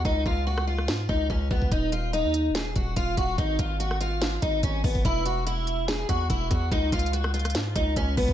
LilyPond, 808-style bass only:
\new Staff \with { instrumentName = "808-style bass" } { \clef bass \time 4/4 \key des \mixolydian \tempo 4 = 144 des,8 des,4. aes,8 des,8 des,8 des,8 | ees,,4~ ees,,16 ees,8~ ees,32 ees,,8~ ees,,32 ees,,8 ees,,8 ees,,8 | aes,,8 aes,,2 aes,,8 aes,,8 aes,,8 | e,,2~ e,,8 e,8 e,,8 e,8 |
des,8 des,4. aes,8 des,8 des,8 des,8 | }